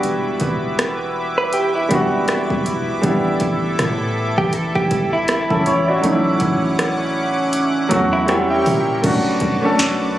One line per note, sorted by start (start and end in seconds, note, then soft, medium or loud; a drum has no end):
0.00 0.96 G3 medium
0.00 0.96 B3 medium
0.00 0.97 D4 medium
0.00 8.25 E4 medium
0.00 0.98 F#4 medium
0.00 3.00 B4 medium
0.00 6.00 E5 medium
0.00 6.00 D6 medium
0.00 closed hi-hat medium
0.04 0.40 E1 loud
0.40 1.87 E1 loud
0.40 kick medium
0.40 closed hi-hat medium
0.79 cross-stick loud
0.79 closed hi-hat medium
1.38 1.53 B4 medium
1.53 1.74 G4 medium
1.53 closed hi-hat medium
1.75 2.84 E4 medium
1.89 2.48 E1 loud
1.89 2.89 G3 medium
1.89 2.89 B3 medium
1.89 2.90 D4 medium
1.89 kick loud
1.89 closed hi-hat medium
1.93 2.91 F#4 medium
2.28 cross-stick loud
2.28 closed hi-hat medium
2.50 2.66 B1 loud
2.50 kick medium
2.66 3.02 E1 loud
2.66 closed hi-hat medium
3.02 3.40 A1 loud
3.02 4.33 G3 medium
3.02 4.34 B3 medium
3.02 4.35 D4 medium
3.02 6.01 A4 medium
3.02 kick loud
3.02 closed hi-hat medium
3.06 4.35 E4 medium
3.40 3.77 A1 loud
3.40 kick medium
3.40 closed hi-hat medium
3.79 4.36 A2 loud
3.79 cross-stick loud
3.79 closed hi-hat medium
4.38 4.74 A1 loud
4.38 4.54 G4 medium
4.38 kick loud
4.53 4.74 A4 medium
4.53 closed hi-hat medium
4.75 4.91 A1 medium
4.75 5.11 G4 medium
4.75 kick medium
4.91 5.48 G1 loud
4.91 kick loud
4.91 closed hi-hat medium
5.13 6.00 E4 medium
5.28 cross-stick loud
5.28 closed hi-hat medium
5.50 5.66 A1 loud
5.50 5.66 C#4 medium
5.50 5.66 A4 medium
5.50 kick medium
5.66 6.02 A1 loud
5.66 5.87 E4 medium
5.66 5.87 C#5 medium
5.66 closed hi-hat medium
5.88 6.24 F#4 medium
5.88 6.24 D5 medium
6.01 6.40 A1 loud
6.01 7.33 F#3 medium
6.01 7.34 A3 medium
6.01 8.27 C#4 medium
6.01 7.35 C#4 medium
6.01 8.27 F#5 medium
6.01 8.27 D6 medium
6.01 closed hi-hat medium
6.06 6.12 D#4 medium
6.12 7.39 E4 medium
6.40 7.87 A1 loud
6.40 kick medium
6.40 closed hi-hat medium
6.79 cross-stick loud
6.79 closed hi-hat medium
7.53 closed hi-hat medium
7.89 8.63 E2 loud
7.89 8.28 F#3 medium
7.89 8.28 A3 medium
7.89 8.28 C#4 medium
7.89 kick loud
7.89 closed hi-hat medium
7.93 8.30 F#4 medium
8.13 8.28 E4 medium
8.26 8.93 G3 medium
8.26 8.94 C4 medium
8.26 8.95 C#4 medium
8.26 9.03 E4 medium
8.26 8.49 F#4 medium
8.26 9.03 A#4 medium
8.26 9.03 G5 medium
8.26 8.49 G5 medium
8.26 9.03 C#6 medium
8.26 cross-stick loud
8.26 closed hi-hat medium
8.31 8.96 E4 loud
8.50 9.01 G4 medium
8.50 9.00 E5 medium
8.66 9.02 A#2 loud
8.66 open hi-hat medium
9.02 9.40 B1 loud
9.02 9.52 A3 medium
9.02 9.53 C#4 medium
9.02 9.54 D4 medium
9.02 10.19 F#4 medium
9.02 10.19 B4 medium
9.02 10.19 A5 medium
9.02 10.19 D6 medium
9.02 kick loud
9.02 closed hi-hat medium
9.02 crash loud
9.06 9.55 F#4 medium
9.40 9.77 B1 loud
9.40 kick loud
9.40 closed hi-hat medium
9.61 10.19 A3 medium
9.61 10.19 C#4 medium
9.61 10.19 D4 medium
9.65 10.19 A4 loud
9.79 10.19 B1 loud
9.79 snare loud
9.79 closed hi-hat medium